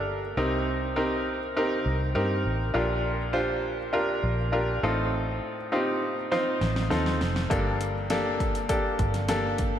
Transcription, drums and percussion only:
6.32 snare soft
6.61 snare medium
6.76 snare medium
6.91 snare medium
7.06 snare medium
7.21 snare medium
7.36 snare medium
7.51 kick medium
7.51 closed hi-hat medium
7.81 closed hi-hat medium
8.10 snare medium
8.10 closed hi-hat medium
8.40 kick medium
8.40 closed hi-hat medium
8.55 closed hi-hat soft
8.69 kick medium
8.69 closed hi-hat medium
8.99 kick medium
8.99 closed hi-hat medium
9.14 snare soft
9.14 closed hi-hat soft
9.29 snare medium
9.29 closed hi-hat medium
9.58 kick medium
9.58 closed hi-hat medium

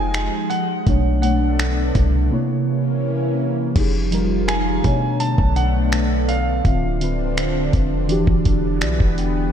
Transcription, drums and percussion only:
0.14 finger snap loud
0.14 closed hi-hat medium
0.51 closed hi-hat medium
0.87 kick loud
0.87 closed hi-hat medium
1.23 closed hi-hat medium
1.59 finger snap loud
1.59 closed hi-hat medium
1.95 kick medium
1.95 closed hi-hat medium
3.76 kick loud
3.76 closed hi-hat medium
3.76 crash medium
4.12 closed hi-hat medium
4.48 finger snap loud
4.48 closed hi-hat medium
4.84 kick medium
4.84 closed hi-hat medium
5.20 closed hi-hat medium
5.38 kick medium
5.56 closed hi-hat medium
5.92 finger snap loud
5.92 closed hi-hat medium
6.29 closed hi-hat medium
6.65 kick loud
6.65 closed hi-hat medium
7.01 closed hi-hat medium
7.37 finger snap loud
7.37 closed hi-hat medium
7.73 kick medium
7.73 closed hi-hat medium
8.09 closed hi-hat medium
8.27 kick loud
8.45 kick medium
8.45 closed hi-hat medium
8.81 finger snap loud
8.81 closed hi-hat medium
9.00 kick medium
9.18 closed hi-hat medium

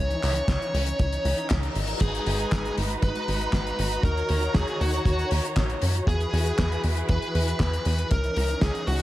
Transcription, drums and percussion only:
0.11 closed hi-hat medium
0.23 clap medium
0.23 open hi-hat loud
0.35 closed hi-hat medium
0.48 kick loud
0.48 snare loud
0.48 clap loud
0.48 closed hi-hat loud
0.62 closed hi-hat medium
0.75 open hi-hat loud
0.86 closed hi-hat medium
0.99 kick loud
0.99 closed hi-hat loud
1.13 closed hi-hat medium
1.25 open hi-hat loud
1.38 closed hi-hat medium
1.50 kick loud
1.50 snare loud
1.50 clap loud
1.50 closed hi-hat loud
1.63 closed hi-hat medium
1.75 open hi-hat loud
1.88 closed hi-hat medium
2.00 kick loud
2.00 closed hi-hat loud
2.00 crash medium
2.15 closed hi-hat medium
2.26 open hi-hat loud
2.39 closed hi-hat medium
2.52 kick loud
2.52 snare loud
2.52 clap medium
2.52 closed hi-hat loud
2.65 closed hi-hat medium
2.77 open hi-hat loud
2.90 closed hi-hat medium
3.02 kick loud
3.02 closed hi-hat loud
3.15 closed hi-hat medium
3.28 open hi-hat loud
3.41 closed hi-hat medium
3.53 kick loud
3.53 snare loud
3.53 clap loud
3.53 closed hi-hat loud
3.67 closed hi-hat medium
3.79 open hi-hat loud
3.92 closed hi-hat medium
4.03 kick loud
4.03 closed hi-hat loud
4.17 closed hi-hat soft
4.29 open hi-hat loud
4.43 closed hi-hat medium
4.54 kick loud
4.54 snare loud
4.54 clap loud
4.54 closed hi-hat loud
4.67 closed hi-hat medium
4.81 open hi-hat loud
4.94 closed hi-hat medium
5.06 kick loud
5.06 closed hi-hat medium
5.19 closed hi-hat medium
5.31 open hi-hat loud
5.45 closed hi-hat medium
5.56 kick loud
5.56 snare loud
5.56 clap loud
5.56 closed hi-hat loud
5.70 closed hi-hat medium
5.82 open hi-hat loud
5.95 closed hi-hat medium
6.07 kick loud
6.07 closed hi-hat loud
6.20 closed hi-hat medium
6.34 open hi-hat loud
6.46 closed hi-hat medium
6.58 kick loud
6.58 snare loud
6.58 clap medium
6.58 closed hi-hat loud
6.72 closed hi-hat medium
6.84 open hi-hat loud
6.97 closed hi-hat medium
7.09 kick loud
7.09 closed hi-hat loud
7.22 closed hi-hat medium
7.35 open hi-hat loud
7.48 closed hi-hat medium
7.60 kick loud
7.60 snare loud
7.60 clap loud
7.60 closed hi-hat medium
7.73 closed hi-hat medium
7.85 open hi-hat loud
7.99 closed hi-hat medium
8.11 kick loud
8.11 closed hi-hat medium
8.24 closed hi-hat medium
8.36 open hi-hat loud
8.48 closed hi-hat medium
8.61 kick loud
8.61 snare loud
8.61 clap medium
8.61 closed hi-hat medium
8.75 closed hi-hat soft
8.87 open hi-hat loud

